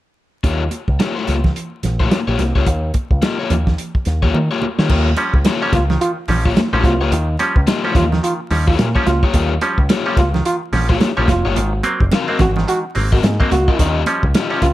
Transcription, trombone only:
0, 0, Header, 1, 2, 480
1, 0, Start_track
1, 0, Tempo, 556586
1, 377, Time_signature, 4, 2, 24, 8
1, 12706, End_track
2, 0, Start_track
2, 0, Title_t, "Trombone"
2, 0, Program_c, 0, 57
2, 4942, Note_on_c, 0, 65, 97
2, 5034, Note_off_c, 0, 65, 0
2, 5184, Note_on_c, 0, 65, 100
2, 5275, Note_off_c, 0, 65, 0
2, 5565, Note_on_c, 0, 65, 77
2, 5626, Note_off_c, 0, 65, 0
2, 5903, Note_on_c, 0, 65, 94
2, 6055, Note_off_c, 0, 65, 0
2, 6864, Note_on_c, 0, 65, 89
2, 6954, Note_off_c, 0, 65, 0
2, 7100, Note_on_c, 0, 65, 95
2, 7191, Note_off_c, 0, 65, 0
2, 7478, Note_on_c, 0, 65, 82
2, 7540, Note_off_c, 0, 65, 0
2, 7814, Note_on_c, 0, 65, 96
2, 7968, Note_off_c, 0, 65, 0
2, 8777, Note_on_c, 0, 65, 91
2, 8868, Note_off_c, 0, 65, 0
2, 9019, Note_on_c, 0, 65, 102
2, 9110, Note_off_c, 0, 65, 0
2, 9397, Note_on_c, 0, 65, 81
2, 9458, Note_off_c, 0, 65, 0
2, 9738, Note_on_c, 0, 65, 100
2, 9890, Note_off_c, 0, 65, 0
2, 10705, Note_on_c, 0, 66, 91
2, 10793, Note_off_c, 0, 66, 0
2, 10940, Note_on_c, 0, 66, 108
2, 11029, Note_off_c, 0, 66, 0
2, 11327, Note_on_c, 0, 66, 70
2, 11385, Note_off_c, 0, 66, 0
2, 11659, Note_on_c, 0, 66, 106
2, 11983, Note_off_c, 0, 66, 0
2, 12611, Note_on_c, 0, 65, 94
2, 12703, Note_off_c, 0, 65, 0
2, 12706, End_track
0, 0, End_of_file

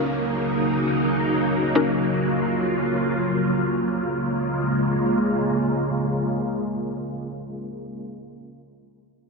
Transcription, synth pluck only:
0, 0, Header, 1, 2, 480
1, 0, Start_track
1, 0, Key_signature, -5, "minor"
1, 0, Tempo, 500000
1, 8925, End_track
2, 0, Start_track
2, 0, Title_t, "Synth pluck"
2, 0, Program_c, 0, 84
2, 0, Note_on_c, 0, 61, 83
2, 0, Note_on_c, 0, 63, 71
2, 0, Note_on_c, 0, 66, 70
2, 0, Note_on_c, 0, 70, 86
2, 1649, Note_off_c, 0, 61, 0
2, 1651, Note_off_c, 0, 63, 0
2, 1652, Note_off_c, 0, 66, 0
2, 1654, Note_off_c, 0, 70, 0
2, 1682, Note_on_c, 0, 61, 62
2, 1684, Note_on_c, 0, 63, 54
2, 1685, Note_on_c, 0, 66, 53
2, 1687, Note_on_c, 0, 70, 64
2, 1937, Note_off_c, 0, 61, 0
2, 1938, Note_off_c, 0, 63, 0
2, 1939, Note_off_c, 0, 66, 0
2, 1940, Note_off_c, 0, 70, 0
2, 8925, End_track
0, 0, End_of_file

